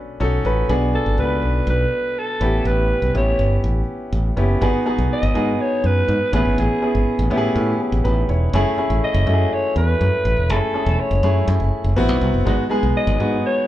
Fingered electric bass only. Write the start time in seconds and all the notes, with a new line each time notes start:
0.20 B1
0.45 A1
0.69 B1
1.06 G#1
1.18 C#2
1.42 B1
1.67 B1
2.41 A1
2.65 A1
3.02 B1
3.15 A1
3.39 G1
3.64 A1
4.13 A1
4.37 F#1
4.62 G#1
4.98 B1
5.23 G#1
5.35 G#2
5.84 F#2
6.08 G#2
6.33 A1
6.45 G#1
6.58 A1
6.95 G#1
7.19 A1
7.31 A2
7.56 A2
7.92 A1
8.05 A1
8.29 E1
8.53 F#1
8.90 A1
9.14 F#1
9.27 F#2
9.76 E2
10.01 F#2
10.25 A1
10.37 E1
10.50 F#1
10.86 E1
11.11 F#1
11.23 F#2
11.48 F#2
11.60 F#1
11.84 F#1
11.96 A1
12.09 B1
12.21 C2
12.34 F#1
12.47 G#1
12.83 B1
13.07 G#1
13.20 G#2